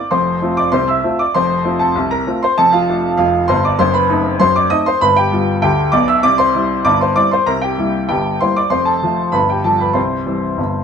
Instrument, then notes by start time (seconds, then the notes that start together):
grand piano
Already playing: D6
0.11 F1 F2 C5 C6
0.42 A3 C4 F4
0.57 D5 D6
0.72 C2 C3 C5 C6
0.88 E5 E6
1.04 A3 C4 F4
1.19 D5 D6
1.34 F1 F2 C5 C6
1.65 A3 C4 F4
1.79 A4 A5
1.95 C2 C3
2.11 A#4 A#5
2.27 A3 C4 F4
2.43 C5 C6
2.58 F1 F2 A4 A5
2.72 F4 F5
2.88 A3 D4 F4
3.17 F1 F2 F4 F5
3.48 G1 G2 C5 C6
3.65 D5 D6
3.79 F#1 F#2 C5 C6
3.94 B4 B5
4.09 A3 C4 D#4
4.40 F#2 F#3 C5 C6
4.56 D5 D6
4.70 A3 C4 D#4 D#5 D#6
4.86 C5 C6
5.01 G1 G2 B4 B5
5.17 G4 G5
5.32 G3 B3 F4
5.62 D2 D3 G4 G5
5.92 B1 B2 D5 D6
6.08 E5 E6
6.23 C2 C3 D5 D6
6.38 C5 C6
6.54 G3 C4 E4
6.85 G1 G2 D5 D6
7.01 C5 C6
7.16 G3 C4 E4 D5 D6
7.31 C5 C6
7.46 C2 C3 A#4 A#5
7.62 G4 G5
7.78 G3 A#3 E4
8.09 G1 G2 G4 G5
8.41 G3 A#3 E4 C5 C6
8.57 D5 D6
8.70 F1 F2 C5 C6
8.85 A4 A5
9.03 F3 A3 F4
9.32 G1 G2 B4 B5
9.50 G4 G5
9.64 F3 G3 D4 A4 A5
9.80 B4 B5
9.94 C2 C3 C5 C6
10.26 E3 G3 C4
10.57 G1 G2